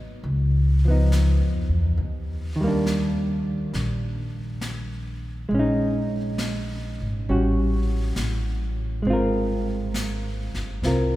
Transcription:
Already playing: F#3 B3 D#4
0.24 C#2, brush sweep
0.85 F3 B3
0.91 D#4
1.12 snare, hi-hat pedal
1.41 F2
1.69 E2
1.98 D#2, brush sweep
2.56 D#3
2.61 G3 A#3
2.68 D4
2.86 snare, hi-hat pedal
3.74 A#1, brush sweep, snare
4.61 snare, hi-hat pedal
5.49 A#1 G#3, brush sweep
5.55 C#4
5.59 D#4
6.38 snare, hi-hat pedal
7.01 G#1
7.27 A1 G3 C#4, brush sweep
7.31 F#4
8.16 A1, snare, hi-hat pedal
9.02 G#1 G#3, brush sweep
9.07 C4 F4
9.13 A#4
9.94 snare, hi-hat pedal
10.54 G1, snare
10.82 C2 C4 F4, brush sweep, snare
10.87 A#4

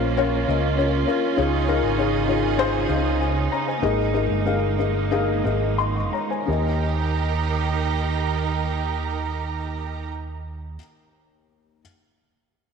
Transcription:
Already playing: A#1 C#3 A#3 C#4 F4 A#4 C5 C#5 D#5
0.17 C#4 F4 A#4 C#5
0.47 C#2 C#4 F4 A#4 D#5
0.77 C#4 F4 A#4 C#5
1.07 C#4 F4 A#4 C#5
1.37 C#2 C#3 D#4 F4 G#4 C#5
1.68 D#4 F4 G#4 A#4
1.83 G#1
1.97 D#4 F4 G#4 C#5
2.28 D#4 F4 G#4 C#5
2.58 D#4 F4 G#4 C5
2.89 C#2 D#4 F4 G#4 D#5
3.20 C5 G#5
3.52 C#5 A#5
3.67 C5 G#5
3.82 G#1 G#3 A#3 D#4 G#4 A#4 D#5
4.13 D#4 G#4 A#4 D#5
4.30 G1
4.45 D#4 G#4 A#4 F5
4.78 D#4 G#4 A#4 D#5
5.11 D#4 G#4 A#4 F5
5.44 G#1 D#4 G#4 A#4 D#5
5.78 D#5 C6
5.95 F5 C#6
6.13 C#5 A#5
6.30 C5 G#5
6.45 D#2 D#3 D#4 G4 A#4 A#5
6.50 D#5

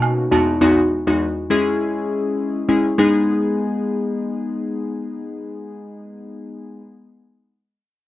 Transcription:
Already playing: B2 A#3 C#4 D#4 F#4
0.02 low woodblock
0.31 E2 G#3 B3 D#4 F#4, high agogo
0.61 E2 G#3 B3 D#4 F#4
1.07 E2 G#3 B3 D#4 F#4
1.50 G#3 C#4 E4 G#4
2.69 G#3 C#4 E4 G#4
2.98 G#3 B3 D#4 G#4

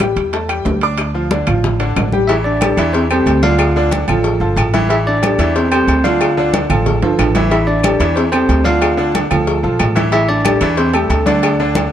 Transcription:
Already playing: A1
0.00 G3 G4 G5, high bongo, high conga, high timbale, low timbale, claves
0.16 E2, high bongo, high conga, high timbale
0.33 A3 A4 A5, high bongo, high conga, high timbale
0.48 G3 G4 G5, high bongo, high conga, high timbale, claves
0.65 D2, high bongo, low bongo, high conga, low timbale
0.81 D4 D5 D6, high bongo, high conga, high timbale
0.98 high bongo, high conga, high timbale, claves
1.14 F3 F4 F5, high conga
1.31 D3 D4 D5, high bongo, high conga, high timbale, low timbale
1.47 A1 F3 F4 F5, high bongo, low conga, high timbale, claves
1.64 high bongo, high conga, low conga
1.80 D3 D4 D5, high bongo, high conga, high timbale
1.96 A1, high bongo, low bongo, high conga, high timbale, low timbale, claves
2.12 G3 G4 G5, high bongo, high conga
2.27 E3 E4 E5, cowbell, high conga, low agogo
2.44 D4 D5, high conga
2.61 G3 G4 A4, cowbell, high conga, low agogo, claves
2.77 E2 E3 E4 E5, cowbell, high conga, low agogo
2.93 C4 C5, cowbell, high conga
3.10 G3 C4 G4 A4 C5, high conga, low agogo, claves
3.26 D2, cowbell, high conga, low agogo
3.43 D3 D4 F4 D5 F5, cowbell, high conga
3.59 cowbell, high conga, low agogo, claves
3.76 D3 D4 D5, high conga
3.91 cowbell, high conga, low agogo
4.08 A1 F3 F4 A4, high conga, low conga, low agogo, claves
4.24 cowbell, high conga
4.40 G1 F3 F4 A4, high conga
4.56 A1, cowbell, high conga, low agogo, claves
4.74 E3 E4 E5, cowbell, high conga, low agogo
4.89 E3 E4 E5, cowbell, high conga, low agogo
5.07 D4 D5, high conga
5.22 G3 G4 A4, cowbell, high conga, low agogo, claves
5.38 E2 E3 E4 E5, cowbell, high conga, low agogo
5.56 C4 C5, cowbell, high conga
5.72 G3 C4 G4 A4 C5, high conga, low agogo, claves
5.87 D2, cowbell, high conga, low agogo
6.04 D3 D4 F4 D5 F5, cowbell, high conga
6.21 cowbell, high conga, low agogo, claves
6.37 D3 D4 D5, high conga
6.53 cowbell, high conga, low agogo
6.70 A1 F3 F4 A4, high conga, low conga, low agogo, claves
6.86 cowbell, high conga, low conga
7.02 G1 F3 F4 A4, high conga, high timbale
7.19 A1, cowbell, high conga, high timbale, low agogo, claves
7.35 E3 E4 E5, cowbell, high conga, low timbale, low agogo
7.51 E3 E4 E5, cowbell, high conga, low agogo
7.67 D4 D5, high conga
7.83 G3 G4 A4, cowbell, high conga, low agogo, claves
8.00 E2 E3 E4 E5, cowbell, high conga, low agogo
8.16 C4 C5, cowbell, high conga
8.32 G3 C4 G4 A4 C5, high conga, low agogo, claves
8.49 D2, cowbell, high conga, low agogo
8.64 D3 D4 F4 D5 F5, cowbell, high conga
8.82 cowbell, high conga, low agogo, claves
8.97 D3 D4 D5, high conga
9.15 cowbell, high conga, low agogo
9.31 D2 F3 F4 A4, high conga, low conga, low agogo, claves
9.47 cowbell, high conga
9.63 B1 F3 F4 A4, high conga
9.79 A1, cowbell, high conga, low timbale, low agogo, claves
9.95 E3 E4 E5, cowbell, high conga, low agogo
10.12 E3 E4 E5, cowbell, high conga, low agogo
10.29 D4 D5, high conga
10.45 G3 G4 A4, cowbell, high conga, low agogo, claves
10.61 E2 E3 E4 E5, cowbell, high conga, low agogo
10.77 C4 C5, cowbell, high conga
10.93 G3 A3 G4 A4, high conga, low agogo, claves
11.10 D2, cowbell, high conga, low agogo
11.26 D3 D4 D5, cowbell, high conga
11.43 cowbell, high conga, low agogo, claves
11.59 D3 D4 D5, high conga
11.75 cowbell, high conga, low agogo

